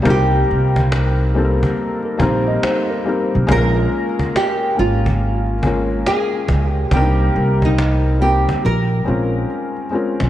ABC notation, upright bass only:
X:1
M:4/4
L:1/16
Q:"Swing 16ths" 1/4=70
K:Bbdor
V:1 name="Upright bass" clef=bass
C,,2 C,,4- C,, z3 B,,,2 z3 _C,, | B,,,2 z4 A,,,6 z2 D,,2 | C,,2 C,,4- C,, z B,,,2 B,,,2 z3 _C,, |]